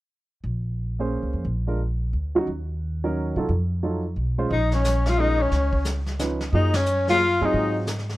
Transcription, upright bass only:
0.44 1.19 A#1 medium
1.23 1.33 C#2 soft
1.33 1.44 F2 medium
1.45 2.09 A#1 medium
2.13 2.45 D2 medium
2.47 3.32 D#2 medium
3.36 3.48 C3 medium
3.49 4.13 F2 medium
4.16 4.48 B1 medium
4.50 5.48 A#1 medium
5.51 6.49 C#2 medium
6.52 7.37 F#2 medium
7.41 7.53 G2 medium
7.53 8.17 G#2 medium

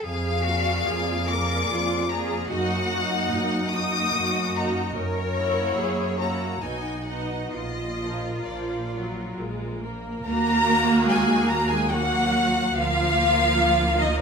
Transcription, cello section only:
0.04 0.44 G#4 medium
0.44 0.87 F#4 medium
0.87 1.30 G#4 medium
1.30 1.71 A#4 medium
1.70 2.10 F4 medium
2.10 2.49 G#4 medium
2.50 3.32 F#4 medium
3.31 3.75 D#4 medium
3.74 4.96 F#4 medium
4.96 5.76 A#4 medium
5.78 6.20 G#4 medium
6.20 6.64 F#4 medium
6.63 7.52 D#4 medium
7.54 9.83 F4 medium
10.26 11.05 A#3 loud
11.09 11.50 G#3 medium
11.50 11.70 A#3 medium
11.71 11.91 G#3 medium
11.91 12.74 F#3 loud
12.74 13.96 F3 loud
13.99 14.20 D#3 medium

